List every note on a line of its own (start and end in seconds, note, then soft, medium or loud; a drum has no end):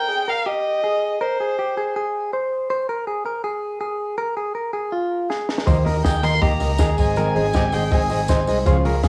0.00 0.30 G5 loud
0.08 0.27 G#4 medium
0.28 0.46 A#4 medium
0.28 0.48 F5 loud
0.46 0.81 G4 medium
0.46 1.22 D#5 loud
0.84 1.19 G#4 medium
1.21 1.39 A#4 loud
1.21 1.95 C5 medium
1.40 1.58 G#4 medium
1.59 1.77 G4 medium
1.77 1.95 G#4 medium
1.96 2.31 G#4 medium
2.33 2.68 C5 medium
2.70 2.89 C5 loud
2.89 3.07 A#4 loud
3.07 3.25 G#4 medium
3.26 3.44 A#4 medium
3.44 3.79 G#4 loud
3.81 4.16 G#4 medium
4.18 4.36 A#4 loud
4.37 4.55 G#4 medium
4.55 4.73 A#4 medium
4.73 4.93 G#4 medium
4.92 5.28 F4 medium
5.30 5.65 G#4 medium
5.30 snare medium
5.49 snare medium
5.58 snare loud
5.66 5.83 D#2 loud
5.66 5.86 D#3 loud
5.66 5.86 A#3 loud
5.66 5.78 D#4 loud
5.66 5.85 D#4 loud
5.66 5.78 G4 loud
5.66 5.84 G4 loud
5.66 5.78 A#4 loud
5.66 5.86 C5 loud
5.66 5.78 D#5 loud
5.66 kick loud
5.66 open hi-hat medium
5.66 tambourine soft
5.84 6.01 D#2 loud
5.84 6.04 A#3 medium
5.84 5.97 D#4 medium
5.84 6.05 D#4 medium
5.84 5.97 G4 medium
5.84 6.04 G4 medium
5.84 5.97 A#4 medium
5.84 6.04 A#4 medium
5.84 5.97 D#5 loud
5.84 hi-hat pedal medium
5.84 open hi-hat medium
6.04 6.20 D#2 loud
6.04 6.23 D#3 medium
6.04 6.24 A#3 medium
6.04 6.16 D#4 medium
6.04 6.23 D#4 medium
6.04 6.16 G4 medium
6.04 6.21 G4 medium
6.04 6.23 G#4 medium
6.04 6.16 A#4 medium
6.04 6.16 D#5 medium
6.04 6.25 G5 loud
6.04 kick loud
6.04 snare loud
6.04 hi-hat pedal medium
6.04 open hi-hat medium
6.04 tambourine medium
6.22 6.39 D#2 loud
6.22 6.40 A#3 soft
6.22 6.34 D#4 medium
6.22 6.41 D#4 medium
6.22 6.41 G4 medium
6.22 6.34 G4 medium
6.22 6.35 A#4 medium
6.22 6.42 A#4 medium
6.22 6.34 D#5 medium
6.22 6.43 C6 loud
6.22 hi-hat pedal medium
6.22 open hi-hat medium
6.22 tambourine medium
6.41 6.57 D#2 loud
6.41 6.60 D#3 medium
6.41 6.61 A#3 medium
6.41 6.53 D#4 loud
6.41 6.60 D#4 medium
6.41 6.53 G4 medium
6.41 6.77 G4 loud
6.41 6.59 G4 medium
6.41 6.53 A#4 medium
6.41 6.53 D#5 loud
6.41 6.98 A#5 loud
6.41 kick loud
6.41 hi-hat pedal medium
6.41 open hi-hat medium
6.60 6.76 C#2 loud
6.60 6.78 A#3 soft
6.60 6.72 D#4 medium
6.60 6.79 D#4 medium
6.60 6.79 G4 medium
6.60 6.72 G4 medium
6.60 6.72 A#4 medium
6.60 6.72 D#5 medium
6.60 hi-hat pedal medium
6.60 open hi-hat medium
6.60 tambourine medium
6.78 6.95 D#2 loud
6.78 6.97 D#3 medium
6.78 6.98 A#3 medium
6.78 6.90 D#4 loud
6.78 6.97 D#4 medium
6.78 6.91 G4 medium
6.78 6.96 G4 medium
6.78 7.15 G#4 medium
6.78 6.91 A#4 loud
6.78 6.91 D#5 loud
6.78 kick loud
6.78 snare loud
6.78 tambourine loud
6.97 7.29 G#1 loud
6.97 7.16 G#3 soft
6.97 7.16 C4 medium
6.97 7.17 D#4 medium
6.97 7.28 D#4 medium
6.97 7.16 G#4 medium
6.97 7.28 G#4 medium
6.97 7.28 C5 medium
6.97 7.29 D#5 medium
6.97 7.75 G#5 loud
6.97 kick loud
6.97 hi-hat pedal medium
6.97 open hi-hat medium
6.97 tambourine medium
7.16 7.35 G#2 medium
7.16 7.36 D#3 medium
7.16 7.36 G#3 medium
7.16 7.36 C4 loud
7.16 7.35 D#4 medium
7.16 7.34 G#4 medium
7.16 7.36 A#4 loud
7.16 hi-hat pedal medium
7.16 open hi-hat medium
7.16 tambourine medium
7.35 7.51 G#1 loud
7.35 7.52 G#3 soft
7.35 7.54 C4 medium
7.35 7.47 D#4 medium
7.35 7.54 D#4 medium
7.35 7.47 G#4 medium
7.35 7.54 G#4 medium
7.35 7.47 C5 medium
7.35 7.47 D#5 medium
7.35 hi-hat pedal medium
7.35 open hi-hat medium
7.53 7.69 G#1 loud
7.53 7.72 G#3 medium
7.53 7.73 C4 medium
7.53 7.65 D#4 medium
7.53 7.72 D#4 medium
7.53 7.73 G4 medium
7.53 7.65 G#4 medium
7.53 7.71 G#4 medium
7.53 7.65 C5 medium
7.53 7.66 D#5 medium
7.53 kick loud
7.53 snare loud
7.53 hi-hat pedal medium
7.53 open hi-hat medium
7.53 tambourine medium
7.72 7.88 G#1 loud
7.72 7.91 G#3 soft
7.72 7.92 C4 soft
7.72 7.84 D#4 medium
7.72 7.92 D#4 soft
7.72 7.91 G#4 medium
7.72 7.84 G#4 medium
7.72 7.91 G#4 medium
7.72 7.84 C5 medium
7.72 7.84 D#5 medium
7.72 7.95 G5 loud
7.72 hi-hat pedal medium
7.72 open hi-hat medium
7.72 tambourine medium
7.91 8.07 G#1 loud
7.91 8.10 G#2 medium
7.91 8.10 D#3 medium
7.91 8.11 G#3 medium
7.91 8.11 C4 loud
7.91 8.02 D#4 loud
7.91 8.10 D#4 medium
7.91 8.02 G#4 loud
7.91 8.27 G#4 medium
7.91 8.09 G#4 loud
7.91 8.03 C5 loud
7.91 8.03 D#5 loud
7.91 8.49 G#5 medium
7.91 kick loud
7.91 hi-hat pedal medium
7.91 open hi-hat medium
7.91 tambourine soft
8.10 8.26 G#1 medium
8.10 8.27 G#3 soft
8.10 8.28 C4 medium
8.10 8.21 D#4 medium
8.10 8.29 D#4 medium
8.10 8.29 G#4 medium
8.10 8.21 G#4 medium
8.10 8.21 C5 medium
8.10 8.22 D#5 medium
8.10 hi-hat pedal medium
8.10 open hi-hat medium
8.10 tambourine medium
8.28 8.44 G#1 loud
8.28 8.47 G#3 medium
8.28 8.48 C4 medium
8.28 8.40 D#4 medium
8.28 8.47 D#4 medium
8.28 8.40 G#4 loud
8.28 8.46 G#4 medium
8.28 8.64 C5 medium
8.28 8.40 C5 loud
8.28 8.40 D#5 loud
8.28 kick loud
8.28 snare loud
8.28 hi-hat pedal medium
8.28 open hi-hat medium
8.28 tambourine loud
8.47 8.63 C2 medium
8.47 8.65 G#3 soft
8.47 8.66 C4 medium
8.47 8.59 D#4 loud
8.47 8.67 D#4 medium
8.47 8.59 G#4 medium
8.47 8.66 G#4 medium
8.47 8.59 C5 medium
8.47 8.59 D#5 loud
8.47 hi-hat pedal medium
8.47 open hi-hat medium
8.47 tambourine medium
8.66 8.82 C#2 loud
8.66 8.85 C#3 loud
8.66 8.85 F3 loud
8.66 8.85 G#3 loud
8.66 8.77 F4 loud
8.66 8.85 F4 medium
8.66 8.77 G#4 loud
8.66 8.84 G#4 loud
8.66 8.85 C5 loud
8.66 8.77 C#5 loud
8.66 8.77 F5 loud
8.66 kick loud
8.66 hi-hat pedal medium
8.66 open hi-hat medium
8.66 tambourine medium
8.84 9.00 C#2 loud
8.84 9.04 G#3 soft
8.84 8.96 F4 loud
8.84 9.04 F4 medium
8.84 8.96 G#4 medium
8.84 9.04 G#4 medium
8.84 9.03 A#4 medium
8.84 8.96 C#5 medium
8.84 8.96 F5 loud
8.84 hi-hat pedal medium
8.84 open hi-hat medium
9.03 9.08 C#2 loud
9.03 9.08 F3 medium
9.03 9.08 G#3 medium
9.03 9.08 F4 medium
9.03 9.08 G#4 medium
9.03 9.08 C#5 medium
9.03 9.08 F5 loud
9.03 kick loud
9.03 snare loud
9.03 hi-hat pedal medium
9.03 open hi-hat medium
9.03 tambourine medium